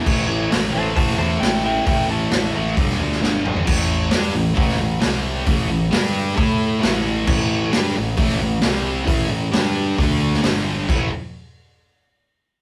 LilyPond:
<<
  \new Staff \with { instrumentName = "Electric slide guitar" } { \time 4/4 \key a \minor \tempo 4 = 133 r4. <c'' a''>8 <c'' a''>8 <c'' a''>8 <e'' g''>8 <e'' g''>8 | <e'' g''>8 a''4 r2 r8 | r1 | r1 |
r1 | r1 | r1 | }
  \new Staff \with { instrumentName = "Distorted electric guitar" } { \clef bass \time 4/4 \key a \minor <a, e a>8 <a, e a>8 <a, e a>8 <a, e a>8 <a, e a>8 <a, e a>8 <a, e a>8 <a, e a>8 | <a, e a>8 <a, e a>8 <a, e a>8 <a, e a>8 <g, d g>8 <g, d g>8 <g, d g>8 <g, d g>8 | <a, e a>4 <g d' g'>8 <a, e>8 <a, e a>8 <a, e>8 <c g c'>4 | <a, e a>8 <a, e>8 <g d' g'>4 <a e' a'>4 <a, e a>4 |
<a, e a>4 <g d' g'>8 <a, e>8 <a, e a>8 <a, e>8 <c g c'>4 | <a, e a>8 <a, e>8 <g d' g'>4 <d a d'>4 <g, d g>4 | <a, e a>8 r2. r8 | }
  \new Staff \with { instrumentName = "Picked electric bass" } { \clef bass \time 4/4 \key a \minor a,,8 a,,8 a,,8 a,,8 a,,8 e,8 a,,4 | a,,8 a,,8 a,,8 a,,8 g,,8 d,8 g,,4 | a,,4 g,8 a,,8 a,,8 a,,8 c,4 | a,,8 a,,8 g,4 a,4 a,,4 |
a,,4 g,8 a,,8 a,,8 a,,8 c,4 | a,,8 a,,8 g,4 d,4 g,,4 | a,,8 r2. r8 | }
  \new DrumStaff \with { instrumentName = "Drums" } \drummode { \time 4/4 <cymc bd>4 <hho sn>4 <hho bd>16 sn8. <hho sn>4 | <hho bd>4 <hho sn>4 <hho bd>16 sn8 sn16 sn8 toml16 tomfh16 | <cymc bd>4 <hho sn>4 <hho bd>16 sn8. <hho sn>4 | <hho bd>4 <hho sn>4 <hho bd>4 <hho sn>4 |
<cymc bd>4 <hho sn>4 <hho bd>16 sn8. <hho sn>4 | <hho bd>4 <hho sn>4 <hho bd>8. sn16 <hho sn>4 | <cymc bd>4 r4 r4 r4 | }
>>